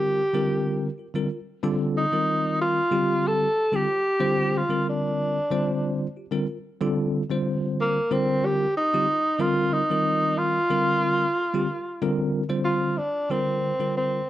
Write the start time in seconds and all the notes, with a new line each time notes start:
Already playing: D3 G3 C4 F4 G4 A#4
0.33 D3 G3 C4 F4 A#4
0.98 F4 A#4
1.14 D3 G3 C4 F4 A#4
1.31 F4 A#4
1.63 D3 G3 C4 F4 A4
1.97 D#4
2.12 D#3 G3 C4 F4 A#4
2.61 F4
2.91 D3 G3 C4 F4 G4
3.27 A4
3.57 F4 G4
3.72 D3 G3 C4 F4 G4 A4
3.89 F4 C5
4.20 D3 G3 C4 F4 C5
4.58 F4
4.69 D3 G3 C4 F4 A#4
4.89 D4
5.51 D3 G3 C4 F4 C5
6.17 F4 G4
6.31 D3 G3 C4 F4 A#4
6.48 F4 A#4
6.81 D3 G3 C4 F4 A4
7.30 D3 G3 C4 F4 C5
7.81 A#3
8.11 D3 G3 C4 F4 A#4
8.45 G4
8.76 D#4 F4 G4
8.93 D3 G3 C4 F4 G4
9.08 F4 A#4
9.39 D3 G3 C4 F4 A#4
9.73 D#4
9.90 D#3 G3 C4 F4 A#4
10.38 F4
10.70 D3 G3 C4 F4 A#4
11.36 F4 A4
11.53 D3 G3 C4 F4 G4
11.69 F4 A#4
12.02 D3 G3 C4 F4 A#4
12.49 D3 G3 C4 F4 C5
12.64 F4
12.98 D4
13.30 D3 G3 C4 F4 A#4
13.79 D3 G3 C4 F4 A#4
13.97 C4